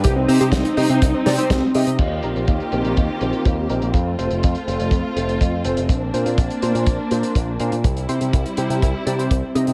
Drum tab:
CC |----------------|x---------------|----------------|----------------|
HH |x-oxxxoxx-oxx-ox|x-xxxxxxx-xxx-xx|x-xxxxxxx-xxx-xx|x-xxxxxxx-xxx-xx|
SD |----o-----o-o---|----------------|----------------|----------------|
BD |o---o---o---o---|o---o---o---o---|o---o---o---o---|o---o---o---o---|

CC |----------------|
HH |xxxxxxxxx-xxx-xx|
SD |----------------|
BD |o---o---o---o---|